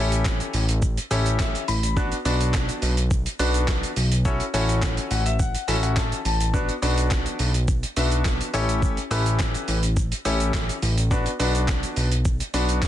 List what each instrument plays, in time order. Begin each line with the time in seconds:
Already playing: analog synth bass A1, grand piano C#4 E4 G4 A4 C#5
0.12 closed hi-hat, shaker
0.25 kick, snare, clap, shaker
0.40 closed hi-hat, shaker
0.54 analog synth bass A1, open hi-hat, shaker
0.69 closed hi-hat, shaker
0.82 kick, shaker
0.97 closed hi-hat, shaker
1.11 analog synth bass A1, grand piano C#4 E4 G4 A4 C#5, open hi-hat, shaker
1.26 closed hi-hat, shaker
1.39 grand piano E5, kick, snare, clap, shaker
1.55 closed hi-hat, shaker
1.68 analog synth bass A1, grand piano B5, open hi-hat, shaker
1.83 closed hi-hat, shaker
1.96 grand piano B3 D4 F#4 B4 D5, kick, shaker
2.12 closed hi-hat, shaker
2.25 analog synth bass B1, grand piano B3 D4 F#4 B4 D5, open hi-hat, shaker
2.41 closed hi-hat, shaker
2.54 kick, snare, clap, shaker
2.69 closed hi-hat, shaker
2.82 analog synth bass B1, open hi-hat, shaker
2.97 closed hi-hat, shaker
3.11 kick, shaker
3.26 closed hi-hat, shaker
3.39 analog synth bass B1, grand piano B3 D4 F#4 B4 D5, open hi-hat, shaker
3.54 closed hi-hat, shaker
3.68 kick, snare, clap, shaker
3.83 closed hi-hat, shaker
3.96 analog synth bass B1, open hi-hat, shaker
4.12 closed hi-hat, shaker
4.25 grand piano C#4 E4 F#4 A4 C#5, kick, shaker
4.40 closed hi-hat, shaker
4.54 analog synth bass A1, grand piano C#4 E4 F#4 A4 C#5, open hi-hat, shaker
4.69 closed hi-hat, shaker
4.82 kick, snare, clap, shaker
4.97 closed hi-hat, shaker
5.11 analog synth bass A1, grand piano F#5, open hi-hat, shaker
5.26 grand piano E5, closed hi-hat, shaker
5.39 grand piano F#5, kick, shaker
5.55 closed hi-hat, shaker
5.68 analog synth bass A1, grand piano C#4 E4 F#4 A4 E5, open hi-hat, shaker
5.83 grand piano F#5, closed hi-hat, shaker
5.96 grand piano A5, kick, snare, clap, shaker
6.12 closed hi-hat, shaker
6.25 analog synth bass A1, grand piano A5, open hi-hat, shaker
6.40 closed hi-hat, shaker
6.53 grand piano B3 D4 F#4 B4 D5, kick, shaker
6.69 closed hi-hat, shaker
6.82 analog synth bass B1, grand piano B3 D4 F#4 B4 D5, open hi-hat, shaker
6.98 closed hi-hat, shaker
7.11 kick, snare, clap, shaker
7.26 closed hi-hat, shaker
7.39 analog synth bass B1, open hi-hat, shaker
7.54 closed hi-hat, shaker
7.68 kick, shaker
7.83 closed hi-hat, shaker
7.96 analog synth bass B1, grand piano B3 D4 F#4 B4 E5, open hi-hat, shaker
8.12 closed hi-hat, shaker
8.25 kick, snare, clap, shaker
8.41 closed hi-hat, shaker
8.53 analog synth bass A1, grand piano C#4 E4 G4 A4 C#5, open hi-hat, shaker
8.69 closed hi-hat, shaker
8.82 kick, shaker
8.97 closed hi-hat, shaker
9.11 analog synth bass A1, grand piano C#4 E4 G4 A4 B4, open hi-hat, shaker
9.26 closed hi-hat, shaker
9.39 kick, snare, clap, shaker
9.54 closed hi-hat, shaker
9.68 analog synth bass A1, open hi-hat, shaker
9.83 closed hi-hat, shaker
9.96 kick, shaker
10.12 closed hi-hat, shaker
10.25 analog synth bass A1, grand piano C#4 E4 G4 A4 C#5, open hi-hat, shaker
10.40 closed hi-hat, shaker
10.54 kick, snare, clap, shaker
10.69 closed hi-hat, shaker
10.82 analog synth bass A1, open hi-hat, shaker
10.98 closed hi-hat, shaker
11.11 grand piano B3 D4 F#4 B4 D5, kick, shaker
11.26 closed hi-hat, shaker
11.39 analog synth bass B1, grand piano B3 D4 F#4 B4 D5, open hi-hat, shaker
11.55 closed hi-hat, shaker
11.68 kick, snare, clap, shaker
11.83 closed hi-hat, shaker
11.96 analog synth bass B1, open hi-hat, shaker
12.12 closed hi-hat, shaker
12.25 kick, shaker
12.40 closed hi-hat, shaker
12.54 analog synth bass B1, grand piano B3 D4 F#4 B4 D5, open hi-hat, shaker
12.69 closed hi-hat, shaker
12.82 kick, snare, clap, shaker